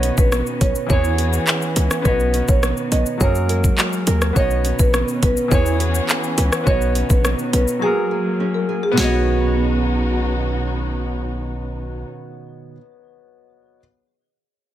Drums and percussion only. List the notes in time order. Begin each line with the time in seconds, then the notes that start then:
0.03 closed hi-hat, shaker
0.17 kick, shaker
0.32 cross-stick, shaker
0.46 shaker
0.61 kick, closed hi-hat, shaker
0.75 shaker
0.90 kick, shaker
1.04 shaker
1.18 closed hi-hat, shaker
1.33 shaker
1.47 clap, shaker
1.62 shaker
1.76 closed hi-hat, shaker
1.91 cross-stick, shaker
2.05 kick, shaker
2.20 shaker
2.34 closed hi-hat, shaker
2.48 kick, shaker
2.63 cross-stick, shaker
2.77 shaker
2.92 closed hi-hat, shaker
3.06 shaker
3.20 kick, shaker
3.35 shaker
3.49 closed hi-hat, shaker
3.64 kick, shaker
3.78 clap, shaker
3.93 shaker
4.07 closed hi-hat, shaker
4.22 cross-stick, shaker
4.36 kick, shaker
4.51 shaker
4.65 closed hi-hat, shaker
4.79 kick, shaker
4.94 cross-stick, shaker
5.08 shaker
5.23 kick, closed hi-hat, shaker
5.37 shaker
5.51 kick, shaker
5.66 shaker
5.80 closed hi-hat, shaker
5.95 shaker
6.09 clap, shaker
6.23 shaker
6.38 closed hi-hat, shaker
6.52 cross-stick, shaker
6.67 kick, shaker
6.81 shaker
6.95 closed hi-hat, shaker
7.10 kick, shaker
7.25 cross-stick, shaker
7.39 shaker
7.53 closed hi-hat, shaker
7.68 shaker
8.98 snare